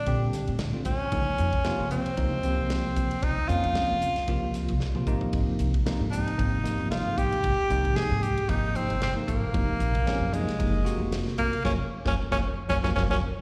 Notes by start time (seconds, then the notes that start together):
Already playing: D4
0.06 A#2 D3 G3 C4 G4, kick, ride
0.33 snare, hi-hat pedal, ride
0.47 A2, ride
0.59 snare, ride
0.73 D3 G3 C4 F4
0.85 D2 C#4, kick, hi-hat pedal, ride
1.12 C#2 C#3 F3 A#3 D#4, kick, ride
1.27 muted upright bass stroke
1.38 F2, hi-hat pedal, ride
1.52 C#2, kick, ride
1.64 C3 F3 A#3 F4, muted upright bass stroke, snare, ride
1.80 C#3
1.91 C3 F3 A#3 C4, hi-hat pedal, ride
2.06 muted upright bass stroke, ride
2.17 C#2 C3 F3 A#3 D#4, kick, ride
2.43 C3 F3 A#3 C4, hi-hat pedal, ride
2.58 C2
2.70 snare, ride
2.96 C#2, kick, hi-hat pedal, ride
3.11 ride
3.22 C#2 D#4, kick, ride
3.38 muted upright bass stroke
3.48 F2 F3 A#3 C4 C#4 F4, hi-hat pedal, ride
3.64 C#2, ride
3.75 muted upright bass stroke, snare, ride
3.92 C#3
4.02 hi-hat pedal, ride
4.16 muted upright bass stroke, snare, ride
4.28 C#2 C3 F3 A#3 F4, kick, ride
4.54 snare, hi-hat pedal, ride
4.68 C2, kick, ride
4.80 snare
4.95 C3 F3 A#3 F4, mid tom
5.07 G#1 C3 F3 A#3 D#4, kick, hi-hat pedal
5.21 floor tom
5.33 G#1, kick, ride
5.48 muted upright bass stroke
5.59 C2, hi-hat pedal, ride
5.74 G#1, kick, ride
5.86 C3 F3 A#3 D#4, muted upright bass stroke, snare, ride
6.01 G#2
6.11 C3 F3 A#3 C4 D#4, hi-hat pedal, ride
6.27 muted upright bass stroke, ride
6.38 G#1 C3 F3 A#3 C4, kick, ride
6.64 C3 F3 A#3 D#4, snare, hi-hat pedal, ride
6.79 G1
6.91 F4, snare, ride
7.18 G#1 G4, kick, hi-hat pedal, ride
7.32 ride
7.44 G#1, kick, ride
7.60 muted upright bass stroke
7.70 C2 C3 F3 A#3 D#4, hi-hat pedal, ride
7.85 G#1, kick, ride
7.96 G#4, muted upright bass stroke, snare, ride
8.11 G#2
8.22 G4, hi-hat pedal, ride
8.37 muted upright bass stroke, ride
8.48 G#1 C3 F3 A#3 D#4, kick, ride
8.75 C4, hi-hat pedal, ride
8.90 G1, ride
9.02 C4, snare, ride
9.15 C3 F3 A#3 D#4
9.28 G#1 A#3, kick, hi-hat pedal, ride
9.53 F#1 C3 F3 A#3 D#4, kick, ride
9.69 muted upright bass stroke
9.80 A#1, hi-hat pedal, ride
9.95 F#1, kick, ride
10.06 C3 F3 A#3 C#4, muted upright bass stroke, snare, ride
10.21 F#2
10.32 C3 F3 G#3 A#3 D#4, hi-hat pedal, ride
10.47 muted upright bass stroke, snare, ride
10.58 F#1 C3 F3 A#3 D#4, kick, ride
10.84 C3 A#3 F4 F#4, snare, hi-hat pedal, ride
10.99 F1
11.12 snare, ride
11.27 snare
11.38 F#1 A#3, kick, hi-hat pedal, ride
11.53 ride
11.64 F#1 F3 F#3 A#3 C#4, kick, snare
12.05 F#1 F3 F#3 A#3 C#4, kick, snare
12.31 F#1 F3 F#3 A#3 C#4, kick, snare
12.69 F#1 F3 F#3 A#3 C#4, kick, snare
12.83 F#1 F3 F#3 A#3 C#4, kick, snare
12.96 F#1 F3 F#3 A#3 C#4, kick, snare
13.10 F#1 F3 F#3 A#3 C#4, kick, snare